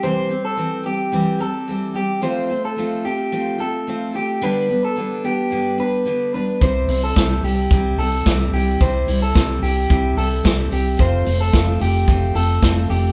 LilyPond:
<<
  \new Staff \with { instrumentName = "Clean electric guitar" } { \time 4/4 \key c \major \tempo 4 = 109 c''8. a'8. g'4 a'4 g'8 | c''8. a'8. g'4 a'4 g'8 | b'8. a'8. g'4 b'4 b'8 | c''8. a'8. g'4 a'4 g'8 |
c''8. a'8. g'4 a'4 g'8 | c''8. a'8. g'4 a'4 g'8 | }
  \new Staff \with { instrumentName = "Steel-string acoustic guitar" } { \time 4/4 \key c \major <c e g c' g'>8 <g c' g'>8 <e g c' g'>8 <g c' g'>8 <c e g c' g'>8 <g c' g'>8 <e g c' g'>8 <g c' g'>8 | <f a c' f'>8 <a c' f'>8 <f a c' f'>8 <a c' f'>8 <f a c' f'>8 <a c' f'>8 <f a c' f'>8 <a c' f'>8 | <g, d g b d'>8 <g b d'>8 <d g b d'>8 <g b d'>8 <g, d g b d'>8 <g b d'>8 <d g b d'>8 <g b d'>8 | <c g c' e'>8 <g c' e'>8 <c g c' e'>8 <g c' e'>8 <c g c' e'>8 <g c' e'>8 <c g c' e'>8 <g c' e'>8 |
<c g c' e'>8 <g c' e'>8 <c g c' e'>8 <g c' e'>8 <c g c' e'>8 <g c' e'>8 <c g c' e'>8 <g c' e'>8 | <f a c' f'>8 <a c' f'>8 <f a c' f'>8 <a c' f'>8 <f a c' f'>8 <a c' f'>8 <f a c' f'>8 <a c' f'>8 | }
  \new Staff \with { instrumentName = "Fingered electric bass" } { \clef bass \time 4/4 \key c \major r1 | r1 | r1 | c,8 c,8 c,8 c,8 c,8 c,8 c,8 c,8 |
c,8 c,8 c,8 c,8 c,8 c,8 c,8 c,8 | f,,8 f,,8 f,,8 f,,8 f,,8 f,,8 f,,8 f,,8 | }
  \new DrumStaff \with { instrumentName = "Drums" } \drummode { \time 4/4 r4 r4 r4 r4 | r4 r4 r4 r4 | r4 r4 r4 r4 | <hh bd>8 hho8 <hh bd sn>8 hho8 <hh bd>8 hho8 <hh bd sn>8 hho8 |
<hh bd>8 hho8 <hh bd sn>8 hho8 <hh bd>8 hho8 <hh bd sn>8 hho8 | <hh bd>8 hho8 <hh bd sn>8 hho8 <hh bd>8 hho8 <hh bd sn>8 hho8 | }
>>